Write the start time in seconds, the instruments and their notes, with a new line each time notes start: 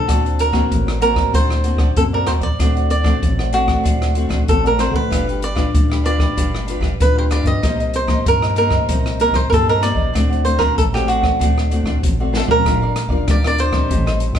Already playing: cavaquinho A4
0.07 analog synth bass D2, nylon-string guitar D3 A#3 C4 F#4, cavaquinho F#4 A4 C5 D5, kick, cross-stick, closed hi-hat
0.24 cavaquinho A4 C5 D5, closed hi-hat
0.39 cavaquinho A#4, closed hi-hat
0.52 nylon-string guitar A#3 C4 F#4, cavaquinho F#4 A4 C5 D5, kick, cross-stick
0.71 analog synth bass A1, nylon-string guitar A2, kick, closed hi-hat
0.87 cavaquinho A4 C5 D5, cross-stick
1.01 nylon-string guitar A#3 C4 F#4, cavaquinho F#4 A4 A#4 C5 D5, closed hi-hat
1.15 cavaquinho A4 C5 D5, kick, cross-stick
1.33 analog synth bass D2, nylon-string guitar D3, cavaquinho F#4 A4 C5 D5, kick, closed hi-hat
1.50 cross-stick
1.64 nylon-string guitar A#3 C4 F#4, cavaquinho F#4 A4 C5 D5, closed hi-hat
1.76 analog synth bass D2, cavaquinho F#4 A4 C5 D5, kick, cross-stick
1.96 analog synth bass F#2, nylon-string guitar A#3 C4 F#4, cavaquinho A4, kick, closed hi-hat
2.13 cavaquinho A4 A#4 C5 D5
2.26 analog synth bass D#2, cavaquinho F#4 A4 C5 D5, cross-stick, closed hi-hat
2.40 cavaquinho A4 C5 D5, kick, closed hi-hat
2.59 analog synth bass D2, nylon-string guitar D3 A3 C4 F#4, cavaquinho D4 C5 D5 F#5, kick, cross-stick, closed hi-hat
2.75 cavaquinho C5 D5 F#5, closed hi-hat
2.90 cavaquinho D5, closed hi-hat
3.04 nylon-string guitar A3 C4 F#4, cavaquinho D4 C5 D5 F#5, kick, cross-stick
3.23 analog synth bass A1, nylon-string guitar A2, kick, closed hi-hat
3.38 cavaquinho C5 D5 F#5, cross-stick
3.52 nylon-string guitar A3 C4 F#4, cavaquinho D4 F#4 C5 D5 F#5, closed hi-hat
3.67 cavaquinho C5 D5 F#5, kick, cross-stick
3.84 analog synth bass D2, nylon-string guitar D3, cavaquinho D4 C5 D5 F#5, kick, closed hi-hat
4.02 cross-stick, closed hi-hat
4.14 nylon-string guitar A3 C4 F#4, cavaquinho D4 C5 D5 F#5, closed hi-hat
4.28 analog synth bass D2, cavaquinho D4 C5 D5 F#5, kick, cross-stick, closed hi-hat
4.48 analog synth bass A1, nylon-string guitar A2 A3 C4 F#4, cavaquinho A4, kick, closed hi-hat
4.64 cavaquinho A#4 C5 D5 F#5, closed hi-hat
4.78 nylon-string guitar A3 C4 F#4, cavaquinho D4 C5 D5 F#5, cross-stick, closed hi-hat
4.91 analog synth bass D3, cavaquinho C5 D5 F#5, kick
4.96 cavaquinho B4
5.10 analog synth bass G1, nylon-string guitar G3 D4 F4 B4, cavaquinho D4 G4 B4 F5, kick, cross-stick, closed hi-hat
5.27 cavaquinho G4 B4 F5, closed hi-hat
5.42 cavaquinho D5, closed hi-hat
5.55 cavaquinho D4 G4 B4 F5, nylon-string guitar D4 F4 B4, kick, cross-stick
5.74 analog synth bass D2, nylon-string guitar D3, kick, closed hi-hat
5.90 cavaquinho G4 B4 F5, cross-stick
6.04 cavaquinho D4 G4 B4 D5 F5, nylon-string guitar D4 F4 B4, closed hi-hat
6.18 cavaquinho G4 B4 F5, kick, cross-stick
6.37 analog synth bass G1, nylon-string guitar G3, cavaquinho D4 G4 B4 F5, kick, closed hi-hat
6.55 cross-stick
6.66 cavaquinho D4 G4 B4 F5, nylon-string guitar D4 F4 B4, closed hi-hat
6.80 analog synth bass G1, cavaquinho D4 G4 B4 F5, kick, cross-stick
7.00 analog synth bass D2, nylon-string guitar D3 D4 F4 B4, cavaquinho B4, kick, closed hi-hat
7.16 cavaquinho G4 B4 C5 F5
7.30 cavaquinho D4 G4 B4 D5 F5, nylon-string guitar D4 F4 B4, cross-stick, closed hi-hat
7.43 analog synth bass G2, cavaquinho G4 B4 F5, kick, closed hi-hat
7.47 cavaquinho D#5
7.62 analog synth bass C2, nylon-string guitar C3 A#3 D#4 G4, cavaquinho D#4 A#4 C5 D#5, kick, cross-stick, closed hi-hat
7.79 cavaquinho A#4 C5 D#5, closed hi-hat
7.94 cavaquinho C5, closed hi-hat
8.07 nylon-string guitar A#3 D#4 G4, cavaquinho D#4 A#4 C5 D#5, kick, cross-stick
8.26 analog synth bass G2, nylon-string guitar G3, cavaquinho A#4, kick, closed hi-hat
8.42 cavaquinho A#4 C5 D#5, cross-stick
8.55 nylon-string guitar A#3 D#4 G4, cavaquinho D#4 A#4 C5 D#5, closed hi-hat
8.70 cavaquinho A#4 C5 D#5, kick, cross-stick
8.89 analog synth bass C2, nylon-string guitar C3, cavaquinho D#4 A#4 C5 D#5, kick, closed hi-hat
9.06 cross-stick, closed hi-hat
9.19 nylon-string guitar A#3 D#4 G4, cavaquinho D#4 A#4 C5 D#5, closed hi-hat
9.32 analog synth bass C2, cavaquinho D#4 A#4 C5 D#5, kick, cross-stick, closed hi-hat
9.50 analog synth bass G2, nylon-string guitar G3 A#3 D#4 G4, cavaquinho A#4, kick, closed hi-hat
9.54 cavaquinho A4
9.69 cavaquinho A#4 C5 D#5, closed hi-hat
9.81 nylon-string guitar A#3 D#4 G4, cavaquinho D#4 A#4 C5 D5 D#5, cross-stick, closed hi-hat
9.95 analog synth bass A1, cavaquinho A#4 C5 D#5, kick
10.13 analog synth bass D2, nylon-string guitar D3 A3 C4 F#4, cavaquinho D4 C5 D5 F#5, kick, cross-stick, closed hi-hat
10.30 cavaquinho C5 D5 F#5, closed hi-hat
10.45 nylon-string guitar A3 C4 F#4, cavaquinho C5, closed hi-hat
10.58 cavaquinho D4 A#4 C5 D5 F#5, kick, cross-stick
10.78 analog synth bass A1, nylon-string guitar A2, cavaquinho A4, kick, closed hi-hat
10.93 nylon-string guitar A3 C4 F#4, cavaquinho G4 C5 D5 F#5, cross-stick
11.07 cavaquinho D4 F#4 C5 D5 F#5, closed hi-hat
11.21 cavaquinho C5 D5 F#5, kick, cross-stick
11.39 analog synth bass D2, nylon-string guitar D3 A3 C4 F#4, cavaquinho D4 C5 D5 F#5, kick, closed hi-hat
11.58 cross-stick
11.70 nylon-string guitar A3 C4 F#4, cavaquinho D4 C5 D5 F#5, closed hi-hat
11.83 analog synth bass D2, cavaquinho D4 C5 D5 F#5, kick, cross-stick
12.03 analog synth bass A1, nylon-string guitar A2, kick, closed hi-hat
12.20 nylon-string guitar A3 C4 F#4, cavaquinho C5 D5 F#5
12.33 cavaquinho D4 C5 D5 F#5, snare
12.37 cavaquinho A4
12.47 analog synth bass D2, cavaquinho A#4 C5 D5 F#5, floor tom
12.65 analog synth bass G1, nylon-string guitar G3 D4 F4 A#4, cavaquinho G4 A#4 D5 F5, kick, cross-stick, closed hi-hat
12.82 cavaquinho A#4 D5 F5
12.96 muted cavaquinho stroke, cross-stick, closed hi-hat
13.08 analog synth bass G1, nylon-string guitar D4 F4, cavaquinho A#4 D5 F5, kick
13.12 nylon-string guitar A#4
13.27 analog synth bass D2, nylon-string guitar D3, cavaquinho G4 A#4 D5 F5, kick, cross-stick, closed hi-hat
13.44 nylon-string guitar D4 F4 A#4, cavaquinho A#4 D5 F5, cross-stick
13.58 cavaquinho C5, closed hi-hat
13.72 nylon-string guitar G3 C4 D#4, cavaquinho A#4 D5 F5, kick, cross-stick
13.89 analog synth bass A1, nylon-string guitar A2, cavaquinho G4 C5 D#5 A5, kick, closed hi-hat
14.06 cavaquinho C5 D#5 A5, cross-stick, closed hi-hat
14.20 muted cavaquinho stroke, closed hi-hat
14.33 analog synth bass A2, nylon-string guitar G3 C4, cavaquinho D#5 A5, kick, cross-stick